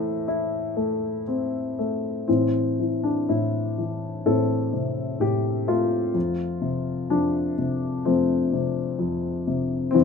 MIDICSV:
0, 0, Header, 1, 2, 480
1, 0, Start_track
1, 0, Key_signature, 0, "minor"
1, 0, Tempo, 998336
1, 1094, Time_signature, 4, 2, 24, 8
1, 2051, Tempo, 947867
1, 4976, End_track
2, 0, Start_track
2, 0, Title_t, "Grand piano"
2, 0, Program_c, 0, 0
2, 0, Control_c, 0, 64, 127
2, 0, Note_on_c, 0, 45, 56
2, 0, Note_on_c, 0, 52, 40
2, 0, Note_on_c, 0, 57, 46
2, 0, Note_on_c, 0, 72, 59
2, 0, Note_on_c, 0, 76, 54
2, 0, Note_on_c, 0, 81, 91
2, 134, Note_on_c, 0, 64, 45
2, 360, Note_off_c, 0, 57, 0
2, 368, Note_on_c, 0, 57, 44
2, 580, Note_off_c, 0, 81, 0
2, 582, Note_off_c, 0, 72, 0
2, 583, Note_off_c, 0, 52, 0
2, 584, Note_off_c, 0, 76, 0
2, 614, Note_on_c, 0, 60, 42
2, 852, Note_off_c, 0, 57, 0
2, 859, Note_on_c, 0, 57, 42
2, 1076, Note_off_c, 0, 45, 0
2, 1079, Note_off_c, 0, 64, 0
2, 1086, Note_off_c, 0, 60, 0
2, 1093, Note_off_c, 0, 57, 0
2, 1095, Note_on_c, 0, 60, 43
2, 1097, Note_on_c, 0, 52, 32
2, 1101, Control_c, 0, 64, 0
2, 1102, Note_on_c, 0, 45, 29
2, 1179, Control_c, 0, 64, 127
2, 1338, Note_off_c, 0, 52, 0
2, 1345, Note_on_c, 0, 52, 24
2, 1459, Note_on_c, 0, 62, 36
2, 1472, Note_off_c, 0, 60, 0
2, 1577, Note_off_c, 0, 45, 0
2, 1581, Note_on_c, 0, 64, 39
2, 1584, Note_off_c, 0, 62, 0
2, 1584, Note_on_c, 0, 45, 24
2, 1811, Note_off_c, 0, 52, 0
2, 1819, Note_on_c, 0, 52, 29
2, 2030, Note_off_c, 0, 64, 0
2, 2039, Note_off_c, 0, 45, 0
2, 2047, Note_on_c, 0, 45, 31
2, 2048, Note_on_c, 0, 69, 49
2, 2049, Note_on_c, 0, 60, 38
2, 2286, Note_on_c, 0, 48, 30
2, 2516, Note_off_c, 0, 45, 0
2, 2523, Note_on_c, 0, 45, 26
2, 2529, Note_on_c, 0, 67, 55
2, 2542, Note_off_c, 0, 69, 0
2, 2747, Note_off_c, 0, 52, 0
2, 2763, Note_on_c, 0, 57, 35
2, 2768, Note_on_c, 0, 65, 48
2, 2775, Note_off_c, 0, 67, 0
2, 2984, Note_off_c, 0, 48, 0
2, 2986, Note_off_c, 0, 60, 0
2, 2989, Note_off_c, 0, 45, 0
2, 3001, Note_on_c, 0, 41, 34
2, 3014, Control_c, 0, 64, 0
2, 3092, Control_c, 0, 64, 127
2, 3240, Note_on_c, 0, 48, 31
2, 3478, Note_off_c, 0, 41, 0
2, 3486, Note_on_c, 0, 41, 28
2, 3488, Note_on_c, 0, 62, 44
2, 3512, Note_off_c, 0, 65, 0
2, 3712, Note_off_c, 0, 57, 0
2, 3722, Note_off_c, 0, 48, 0
2, 3729, Note_on_c, 0, 48, 30
2, 3964, Note_off_c, 0, 41, 0
2, 3968, Note_on_c, 0, 60, 47
2, 3971, Note_on_c, 0, 57, 31
2, 3972, Note_on_c, 0, 41, 34
2, 3987, Note_off_c, 0, 62, 0
2, 4204, Note_off_c, 0, 48, 0
2, 4211, Note_on_c, 0, 48, 34
2, 4435, Note_off_c, 0, 41, 0
2, 4443, Note_on_c, 0, 41, 34
2, 4661, Note_off_c, 0, 60, 0
2, 4680, Note_off_c, 0, 48, 0
2, 4688, Note_on_c, 0, 48, 34
2, 4905, Note_off_c, 0, 57, 0
2, 4908, Note_on_c, 0, 60, 57
2, 4911, Note_off_c, 0, 41, 0
2, 4922, Note_off_c, 0, 48, 0
2, 4925, Note_on_c, 0, 52, 43
2, 4930, Note_on_c, 0, 40, 41
2, 4934, Control_c, 0, 64, 0
2, 4976, Note_off_c, 0, 40, 0
2, 4976, Note_off_c, 0, 52, 0
2, 4976, Note_off_c, 0, 60, 0
2, 4976, End_track
0, 0, End_of_file